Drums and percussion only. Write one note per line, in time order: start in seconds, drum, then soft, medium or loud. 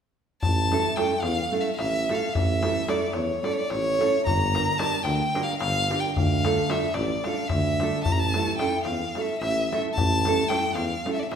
0.43 darbuka dum medium
0.57 darbuka tek soft
0.72 darbuka tek medium
0.97 darbuka tek medium
1.23 darbuka tek medium
1.79 darbuka tek medium
2.09 darbuka tek medium
2.22 darbuka tek soft
2.35 darbuka dum medium
2.49 darbuka tek soft
2.63 darbuka tek medium
2.88 darbuka tek medium
3.13 darbuka tek medium
3.44 darbuka tek medium
3.70 darbuka tek medium
4.01 darbuka tek medium
4.15 darbuka tek soft
4.27 darbuka dum medium
4.40 darbuka tek soft
4.55 darbuka tek medium
4.79 darbuka tek medium
5.05 darbuka tek medium
5.35 darbuka tek medium
5.60 darbuka tek medium
5.91 darbuka tek medium
6.04 darbuka tek soft
6.17 darbuka dum medium
6.31 darbuka tek soft
6.45 darbuka tek medium
6.58 darbuka tek soft
6.70 darbuka tek medium
6.82 darbuka tek soft
6.94 darbuka tek medium
7.10 darbuka tek soft
7.24 darbuka tek medium
7.49 darbuka tek medium
7.49 darbuka dum medium
7.65 darbuka tek soft
7.80 darbuka tek medium
7.93 darbuka tek soft
8.05 darbuka dum medium
8.20 darbuka tek soft
8.34 darbuka tek medium
8.59 darbuka tek medium
8.85 darbuka tek medium
9.15 darbuka tek medium
9.42 darbuka tek medium
9.73 darbuka tek medium
9.85 darbuka tek soft
9.98 darbuka dum medium
10.12 darbuka tek soft
10.25 darbuka tek medium
10.50 darbuka tek medium
10.75 darbuka tek medium
11.06 darbuka tek medium
11.32 darbuka tek medium